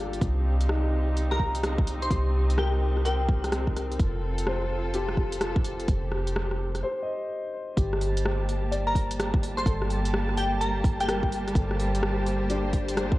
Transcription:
0.00 0.20 G1 medium
0.00 0.18 G3 medium
0.00 0.18 A#3 medium
0.00 0.41 D4 medium
0.00 0.41 F4 medium
0.00 3.96 G4 medium
0.00 0.18 A4 medium
0.00 0.18 D5 medium
0.13 closed hi-hat soft
0.21 2.09 C2 medium
0.21 6.80 C4 medium
0.21 3.96 D#4 medium
0.21 kick loud
0.21 closed hi-hat soft
0.61 closed hi-hat medium
0.69 2.00 D#4 medium
0.69 cross-stick loud
1.17 closed hi-hat soft
1.31 1.56 A#5 medium
1.31 cross-stick medium
1.40 kick medium
1.55 closed hi-hat medium
1.63 cross-stick loud
1.63 closed hi-hat medium
1.78 kick loud
1.87 closed hi-hat medium
2.02 2.27 C6 medium
2.02 closed hi-hat soft
2.11 3.98 C2 medium
2.11 2.57 G4 soft
2.11 kick loud
2.11 closed hi-hat soft
2.50 closed hi-hat medium
2.58 3.89 G4 medium
2.58 3.04 A#4 medium
2.58 2.84 G5 medium
2.58 cross-stick loud
2.97 cross-stick soft
3.05 4.20 A#4 medium
3.05 3.73 G5 medium
3.05 closed hi-hat soft
3.29 kick loud
3.44 cross-stick medium
3.44 closed hi-hat soft
3.52 cross-stick loud
3.52 closed hi-hat medium
3.67 kick medium
3.77 cross-stick soft
3.77 closed hi-hat medium
3.92 closed hi-hat soft
4.00 5.87 F1 medium
4.00 5.87 F4 medium
4.00 6.81 A4 medium
4.00 kick loud
4.00 closed hi-hat soft
4.38 closed hi-hat medium
4.47 5.78 C5 medium
4.47 cross-stick loud
4.94 6.25 G4 medium
4.94 closed hi-hat medium
5.09 cross-stick medium
5.17 kick medium
5.32 closed hi-hat medium
5.41 cross-stick loud
5.41 closed hi-hat medium
5.56 kick loud
5.65 closed hi-hat medium
5.80 closed hi-hat soft
5.88 6.83 F1 medium
5.88 6.83 G4 medium
5.88 kick loud
5.88 closed hi-hat medium
6.12 cross-stick medium
6.27 closed hi-hat medium
6.36 cross-stick loud
6.51 cross-stick soft
6.75 cross-stick soft
6.75 closed hi-hat soft
6.83 7.97 C5 medium
7.02 8.15 D#5 medium
7.77 9.65 G1 medium
7.77 13.19 G3 medium
7.77 13.19 A#3 medium
7.77 9.08 G4 medium
7.77 13.19 G4 medium
7.77 13.19 A5 medium
7.77 kick loud
7.77 closed hi-hat medium
7.93 cross-stick medium
8.01 open hi-hat medium
8.17 closed hi-hat medium
8.26 cross-stick loud
8.49 open hi-hat medium
8.72 10.03 D5 medium
8.72 closed hi-hat medium
8.87 9.12 A#5 medium
8.95 kick medium
8.95 open hi-hat medium
9.11 closed hi-hat medium
9.20 cross-stick loud
9.20 closed hi-hat medium
9.34 kick loud
9.43 open hi-hat medium
9.57 9.82 C6 medium
9.57 cross-stick soft
9.57 closed hi-hat soft
9.66 11.54 G1 medium
9.66 10.98 A4 medium
9.66 kick loud
9.66 closed hi-hat medium
9.82 cross-stick medium
9.90 open hi-hat medium
10.05 closed hi-hat medium
10.14 cross-stick loud
10.29 cross-stick soft
10.37 10.60 G5 medium
10.37 open hi-hat medium
10.61 10.86 A#5 medium
10.61 closed hi-hat medium
10.84 kick loud
10.84 open hi-hat medium
11.00 11.65 G5 medium
11.00 cross-stick soft
11.00 closed hi-hat medium
11.08 12.40 A#4 medium
11.08 cross-stick loud
11.08 closed hi-hat medium
11.23 kick medium
11.32 open hi-hat medium
11.48 cross-stick soft
11.48 closed hi-hat soft
11.55 13.19 G1 medium
11.55 12.87 A4 medium
11.55 13.19 C5 medium
11.55 kick loud
11.55 closed hi-hat medium
11.71 cross-stick medium
11.80 open hi-hat medium
11.95 closed hi-hat medium
12.03 cross-stick loud
12.26 open hi-hat medium
12.50 13.19 D4 medium
12.50 13.19 G4 medium
12.50 closed hi-hat medium
12.73 kick medium
12.73 open hi-hat medium
12.88 closed hi-hat medium
12.97 cross-stick loud
12.97 closed hi-hat medium
13.12 kick loud

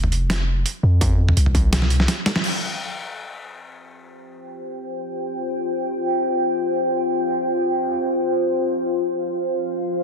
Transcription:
0.00 0.64 F1 medium
0.00 mid tom medium
0.12 closed hi-hat soft
0.30 snare loud
0.30 closed hi-hat medium
0.66 closed hi-hat medium
0.83 1.36 F2 loud
1.01 kick loud
1.01 closed hi-hat medium
1.29 mid tom medium
1.37 2.07 C2 loud
1.37 closed hi-hat medium
1.46 mid tom medium
1.55 kick medium
1.55 closed hi-hat soft
1.73 snare loud
1.73 closed hi-hat medium
1.73 high tom medium
1.82 snare medium
1.90 closed hi-hat soft
2.00 snare medium
2.08 snare medium
2.08 closed hi-hat medium
2.26 snare medium
2.26 closed hi-hat soft
2.36 snare medium
2.44 10.03 F4 medium
2.44 10.03 C5 medium
2.44 8.14 G5 medium
2.44 crash medium
8.16 10.03 F5 medium

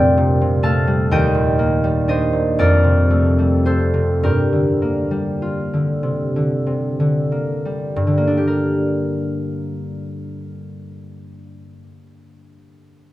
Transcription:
0.00 1.15 F2 medium
0.00 0.40 C3 medium
0.00 1.14 F3 medium
0.00 0.86 G3 medium
0.00 0.62 A3 medium
0.00 2.07 D4 medium
0.00 0.93 C5 medium
0.00 2.58 D5 medium
0.00 0.63 F5 medium
0.00 1.10 G5 medium
0.17 0.56 A#2 soft
0.41 1.15 C3 soft
0.63 1.14 A3 medium
0.63 1.15 F5 medium
0.63 1.15 A5 medium
0.87 1.83 G3 soft
1.11 2.63 D#2 medium
1.11 2.07 D#5 medium
1.11 5.02 G5 medium
1.34 2.32 A#2 soft
1.59 2.62 A#3 medium
1.84 3.37 G3 soft
2.08 2.62 D4 soft
2.08 3.64 C5 medium
2.08 2.63 D#5 medium
2.33 2.62 A#2 soft
2.59 4.28 F2 medium
2.59 4.22 A#4 medium
2.59 4.47 D5 medium
2.84 3.92 C3 soft
3.10 4.27 A3 soft
3.39 5.10 G3 soft
3.65 4.28 C4 soft
3.65 4.28 A4 soft
3.65 4.28 C5 medium
3.94 4.27 C3 soft
4.23 7.95 G2 medium
4.23 8.15 G4 soft
4.23 8.14 A#4 medium
4.53 5.72 D3 soft
4.82 7.31 A#3 soft
5.11 7.64 G3 soft
5.42 8.02 F4 soft
5.74 6.35 D3 soft
6.03 6.56 C3 soft
6.36 6.99 D3 soft
6.67 7.21 C3 soft
7.00 8.02 D3 soft
7.32 8.16 A#3 soft
7.65 11.55 G3 soft
7.96 11.86 G2 medium
8.07 11.97 D3 soft
8.17 11.71 A#3 soft
8.27 11.81 D4 soft
8.37 11.91 G4 soft
8.47 12.01 A#4 soft

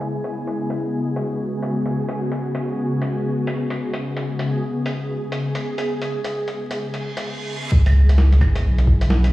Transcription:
0.00 0.29 C#3 medium
0.00 7.22 G#3 medium
0.00 0.29 B3 medium
0.00 0.29 E4 medium
0.00 7.25 G#4 medium
0.00 closed hi-hat soft
0.24 closed hi-hat soft
0.33 7.21 C#3 medium
0.33 7.21 B3 medium
0.33 3.99 F#4 medium
0.47 closed hi-hat soft
0.70 closed hi-hat soft
1.16 closed hi-hat soft
1.62 closed hi-hat soft
1.86 closed hi-hat soft
2.09 closed hi-hat soft
2.32 closed hi-hat soft
2.55 closed hi-hat soft
3.02 closed hi-hat soft
3.47 closed hi-hat medium
3.70 closed hi-hat soft
3.94 closed hi-hat soft
4.02 7.22 G#4 medium
4.17 closed hi-hat soft
4.39 closed hi-hat soft
4.86 closed hi-hat soft
5.32 closed hi-hat soft
5.55 closed hi-hat soft
5.78 closed hi-hat soft
6.02 closed hi-hat soft
6.25 closed hi-hat medium
6.48 closed hi-hat soft
6.71 closed hi-hat medium
6.79 reverse cymbal medium
6.94 closed hi-hat soft
7.17 closed hi-hat medium
7.71 8.40 C#2 medium
7.71 9.33 C#3 medium
7.71 9.33 G#3 medium
7.71 9.33 B3 medium
7.71 9.33 E4 medium
7.71 kick loud
7.71 impact medium
7.86 closed hi-hat soft
7.86 claves soft
8.09 closed hi-hat medium
8.18 snare loud
8.32 closed hi-hat soft
8.41 8.63 G#1 medium
8.41 kick loud
8.41 snare medium
8.41 claves medium
8.55 closed hi-hat medium
8.65 9.33 B1 medium
8.78 closed hi-hat soft
8.87 kick loud
9.01 closed hi-hat medium
9.10 snare loud
9.24 closed hi-hat soft

